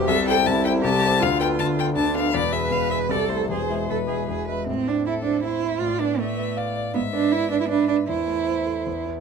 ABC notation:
X:1
M:3/4
L:1/16
Q:1/4=158
K:Am
V:1 name="Violin"
e2 g2 a2 g2 a4 | f2 g2 a2 g2 a2 f2 | d2 e2 f2 e2 d2 c2 | c4 B6 z2 |
z4 A4 c4 | d4 e4 d4 | e8 B4 | c8- c2 z2 |]
V:2 name="Cello"
A4 E4 G4 | F8 D4 | B8 A4 | ^G4 A2 G2 G2 B2 |
C2 D2 E2 D2 E4 | F2 D2 A,6 z2 | B,2 D2 E2 D E D2 D2 | E8- E2 z2 |]
V:3 name="Grand piano"
[C,,C,]2 [EAc]2 [C,,C,]2 [EAc]2 [C,,C,]2 [EAc]2 | [D,,D,]2 [B,AB]2 [D,,D,]2 [B,AB]2 [D,,D,]2 [B,AB]2 | [E,,,E,,]2 [B,^GB]2 [E,,,E,,]2 [B,GB]2 [C,,C,]2 [A,Ee]2 | [E,,,E,,]2 [^G,Ee]2 [E,,,E,,]2 [G,Ee]2 [E,,,E,,]2 [G,Ee]2 |
A,,2 C2 e2 c2 e2 E2 | A,,2 B,2 d2 B2 f2 d2 | ^G,,2 B,2 d2 B2 e2 d2 | E,,2 A,2 c2 A2 E,,2 [EB]2 |]